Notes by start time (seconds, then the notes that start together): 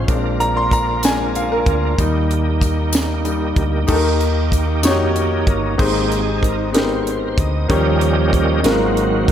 Already playing: F3 C4 F4 C#5 D#5 F5 G#5
0.08 A#1 G#3 A#3 C4 D4 A#4, kick, closed hi-hat, tambourine
0.40 A#5, closed hi-hat
0.57 C6
0.71 A#5, kick, closed hi-hat, tambourine
1.03 G#3 C4 D4 G#5, snare, closed hi-hat, tambourine
1.35 F5, closed hi-hat, tambourine
1.52 A#4
1.66 D2, kick, closed hi-hat
1.98 D#2 G3 A#3 D#4 G4, kick, closed hi-hat, tambourine
2.31 closed hi-hat
2.61 kick, closed hi-hat, tambourine
2.93 snare, closed hi-hat, tambourine
3.25 G3 A#3 D#4, closed hi-hat, tambourine
3.56 D2, kick, closed hi-hat
3.87 D#2 D#3 A#3 D#4 G4 A4, kick, crash, tambourine
3.95 A#4
4.21 closed hi-hat
4.52 kick, closed hi-hat, tambourine
4.83 F2 A#3 D#4 F#4 G4 C#5, snare, closed hi-hat, tambourine
4.90 G4
5.16 closed hi-hat, tambourine
5.47 G1 A#4, kick, closed hi-hat
5.78 G#1 G#2 G#3 A#3 C4 D#4 G4 G#4 C5, kick, crash
6.12 closed hi-hat
6.42 A#4, kick, closed hi-hat
6.72 G#3 B3 D#4 G4 A#4 C5, closed hi-hat
6.77 C4, snare
7.02 C#5
7.07 C5, closed hi-hat
7.20 A#4
7.28 C5
7.38 D2 D#5, kick, closed hi-hat
7.68 D#2 D#3 F3 G3 A#3 C#4 D#4 G4 A#4 C#5 D#5, kick, closed hi-hat
8.01 closed hi-hat
8.33 kick, closed hi-hat
8.63 G#1 G#2 D#3 F#3 G#3 A#3 C4 F4 F#4 A#4, snare, closed hi-hat
8.71 C4
8.97 closed hi-hat
9.28 C2, kick, closed hi-hat